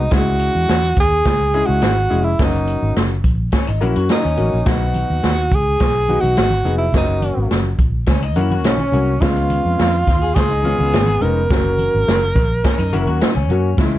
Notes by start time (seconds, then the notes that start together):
Already playing: D#4
0.11 C#2 G#3 C#4 E4 F#4 G#4, kick, snare, closed hi-hat
0.39 closed hi-hat
0.55 E2
0.69 E2, snare, closed hi-hat
0.97 D#2 G#4, kick, snare, closed hi-hat
1.25 C#2, kick, snare, closed hi-hat
1.54 G#3 C#4 E4 G#4, closed hi-hat
1.66 C#2 F#4
1.82 G#1, snare, closed hi-hat
2.10 F1 G#3 C#4 E4 G#4, closed hi-hat
2.24 E4
2.39 F#1 F#3 A#3 C#4 D#4 F#4, kick, snare, closed hi-hat
2.54 closed hi-hat
2.67 closed hi-hat
2.83 G#1
2.96 F#1, snare, closed hi-hat
3.24 A#1, kick, closed hi-hat
3.52 C#4, kick, snare, closed hi-hat
3.67 G#1 D#4
3.81 A#1 F#3 A#3 C#4 E4 F#4, closed hi-hat
3.96 F#2 F#4, closed hi-hat
4.09 D#4, snare, closed hi-hat
4.24 D#2 C#4
4.37 A1 F#3 A#3 C#4 F#4, closed hi-hat
4.54 A#1
4.66 F#3 B3 D#4 F#4, kick, snare, closed hi-hat, muted conga, low conga
4.94 closed hi-hat, high conga
5.10 D#2
5.23 D#2, snare, closed hi-hat, muted conga
5.51 C#2 G#4, kick, closed hi-hat, high conga, low conga
5.80 B1, kick, snare, closed hi-hat, muted conga, high conga
5.94 muted conga
6.08 F#3 B3 D#4 F#4, closed hi-hat, high conga
6.20 B1 F#4, closed hi-hat, high conga
6.36 G#1, snare, closed hi-hat, muted conga
6.50 high conga
6.64 F1 F#3 B3 D#4 G#4, closed hi-hat, low conga
6.78 E4
6.92 F#1 F#3 A#3 C#4 F4, kick, snare, closed hi-hat, muted conga, low conga
6.97 D#4
7.01 F#4
7.07 muted conga
7.21 closed hi-hat, high conga
7.37 G#1
7.51 F#1, snare, closed hi-hat
7.64 muted conga
7.79 A#1, kick, closed hi-hat, high conga, low conga
8.06 C#2 C#4, kick, snare, closed hi-hat, high conga
8.22 D#4, muted conga
8.36 F#2 F#3 A#3 C#4 E4 F#4, closed hi-hat, high conga
8.51 F#4, high conga
8.64 B1 C#4 D#4, snare, closed hi-hat, muted conga
8.78 C#4, high conga
8.92 C2 F#3 A#3 C#4 F#4, closed hi-hat, low conga
9.21 C#2 G#3 B3 C#4 F4, kick, snare, closed hi-hat, muted conga, low conga
9.35 closed hi-hat, muted conga
9.50 closed hi-hat, high conga
9.65 F2
9.79 F2, snare, closed hi-hat
10.07 D#2 F4, kick, snare, closed hi-hat, high conga, low conga
10.22 G#4
10.34 C#2 F4 G#4, kick, snare, closed hi-hat, high conga
10.50 D#4, muted conga
10.64 G#3 B3 C#4 F4, closed hi-hat, high conga
10.79 C#2 B3, high conga
10.93 G#1, snare, closed hi-hat, muted conga
11.07 muted conga, high conga
11.21 F1 G#3 B3 C#4 D#4 A#4, closed hi-hat, low conga
11.49 F#1 F#3 A#3 C#4 F#4, kick, snare, closed hi-hat, low conga
11.64 muted conga
11.78 closed hi-hat, high conga
11.95 G#1
12.07 F#1, snare, closed hi-hat, muted conga
12.21 muted conga
12.35 A#1, kick, snare, closed hi-hat, high conga, low conga
12.64 C#4, kick, snare, closed hi-hat, muted conga, high conga
12.78 F#2 D#4
12.93 F#1 F#3 A#3 C#4 E4 F#4, closed hi-hat, high conga
13.06 D#2 F#4, high conga
13.20 D#4, muted fingered electric bass stroke, snare, closed hi-hat, muted conga
13.35 C#2 C#4, high conga
13.49 F#2 F#3 A#3 C#4 F#4, closed hi-hat, low conga
13.77 C#2 E3 G#3 C#4 E4, kick, snare, closed hi-hat, muted conga, low conga